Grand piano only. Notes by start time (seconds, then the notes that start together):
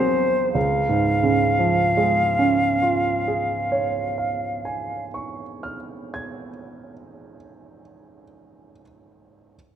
Already playing: F#3 C4 G#4
0.55 C#2
0.89 G#2
1.23 C#3
1.59 F3
1.97 G#3
2.39 C#4
2.82 F4
3.28 G#4
3.72 C#5
4.18 F5
4.65 G#5
5.14 C#6
5.63 F6
6.14 G#6